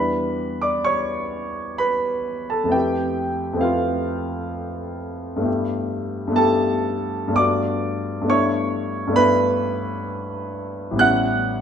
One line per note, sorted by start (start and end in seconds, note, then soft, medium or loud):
0.00 2.65 E2 soft
0.00 2.66 G3 soft
0.00 2.67 D4 soft
0.00 2.68 E4 soft
0.00 0.59 B4 soft
0.00 0.62 B5 medium
0.62 0.85 D5 soft
0.62 0.86 D6 medium
0.84 1.78 C#5 soft
0.84 1.81 C#6 medium
1.78 2.46 B4 soft
1.78 2.50 B5 medium
2.50 2.73 A4 soft
2.50 2.73 A5 soft
2.64 3.51 F2 soft
2.64 3.53 A3 soft
2.68 3.55 C4 soft
2.68 3.57 E4 soft
2.68 3.63 G5 medium
2.72 3.60 G4 soft
2.72 3.59 B4 soft
3.53 5.37 F2 soft
3.53 5.36 A3 soft
3.53 5.39 C4 soft
3.58 5.40 E4 soft
3.58 5.41 B4 soft
3.58 5.00 F5 medium
3.62 4.96 F4 soft
5.36 6.26 G2 soft
5.36 6.28 A3 soft
5.36 6.30 B3 soft
5.42 6.32 E4 soft
5.42 6.33 G4 soft
6.27 7.26 G2 soft
6.27 7.28 A3 soft
6.27 7.30 B3 soft
6.34 7.34 E4 soft
6.34 7.35 G4 soft
6.34 7.35 A4 medium
6.34 7.38 A5 medium
7.28 8.20 G2 soft
7.28 8.22 A3 soft
7.28 8.23 B3 soft
7.34 8.26 D4 soft
7.34 8.28 F#4 soft
7.34 8.27 D5 medium
7.34 8.30 D6 medium
8.21 9.06 G2 soft
8.21 9.08 A3 soft
8.21 9.10 B3 soft
8.28 9.12 D4 soft
8.28 9.13 E4 soft
8.28 9.13 C#5 medium
8.28 9.16 C#6 medium
9.07 10.92 G2 soft
9.07 10.93 A3 soft
9.11 10.94 B3 soft
9.11 10.95 D4 soft
9.11 10.96 E4 soft
9.16 10.96 B4 medium
9.16 11.00 B5 medium
10.91 11.61 A1 soft
10.91 11.61 G3 soft
10.96 11.61 B3 soft
10.96 11.61 C#4 soft
10.96 11.61 E4 soft
10.96 11.61 F#6 medium
11.01 11.61 F#5 medium